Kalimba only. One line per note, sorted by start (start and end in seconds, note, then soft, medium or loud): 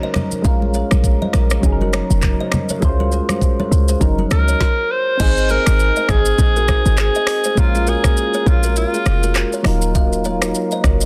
0.03 0.12 C5 medium
0.03 0.11 D#5 medium
0.16 0.28 A#4 medium
0.16 0.27 C#5 medium
0.45 0.57 C#5 medium
0.45 0.57 F5 loud
0.75 0.87 A#4 medium
0.75 0.86 C#5 medium
1.22 1.31 C5 medium
1.22 1.30 D#5 medium
1.34 1.46 A#4 medium
1.34 1.46 C#5 medium
1.82 1.90 F#4 medium
1.82 1.90 A#4 medium
1.94 2.06 A#4 medium
1.94 2.05 C#5 medium
2.41 2.49 C5 medium
2.41 2.49 D#5 medium
2.70 2.79 A#4 medium
2.70 2.79 C#5 medium
3.00 3.09 F#4 medium
3.00 3.08 A#4 medium
3.13 3.24 G#4 medium
3.13 3.24 C5 medium
3.60 3.68 A#4 medium
3.60 3.68 C#5 medium
3.89 3.98 G#4 medium
3.89 3.97 C5 medium
4.19 4.28 F#4 medium
4.19 4.27 A#4 medium
4.49 4.57 A#4 medium
4.49 4.57 C#5 medium
5.20 5.32 C5 medium
5.20 5.32 D#5 loud
5.50 5.62 G#4 medium
5.50 5.62 C5 medium
5.97 6.06 C5 medium
5.97 6.05 D#5 medium
6.09 6.21 G#4 medium
6.09 6.21 C5 medium
6.56 6.65 F#4 medium
6.56 6.65 A#4 medium
6.69 6.81 G#4 medium
6.69 6.81 C5 medium
7.16 7.25 C5 medium
7.16 7.24 D#5 medium
7.46 7.54 G#4 medium
7.46 7.54 C5 medium
7.75 7.84 F4 medium
7.75 7.83 G#4 medium
7.88 8.00 F#4 medium
7.88 7.99 A#4 medium
8.35 8.43 A#4 medium
8.35 8.43 C#5 medium
8.64 8.73 F#4 medium
8.64 8.73 A#4 medium
8.94 9.03 F4 medium
8.94 9.02 G#4 medium
9.24 9.33 F#4 medium
9.24 9.32 A#4 medium
9.54 9.62 A#4 medium
9.54 9.62 C#5 medium
9.66 9.78 F#4 medium
9.66 9.77 A#4 medium
9.96 10.08 A#4 medium
9.96 10.07 F5 loud
10.25 10.37 A#4 medium
10.25 10.37 C#5 medium
10.72 10.81 C5 medium
10.72 10.81 D#5 medium
10.85 10.97 A#4 medium
10.85 10.96 C#5 medium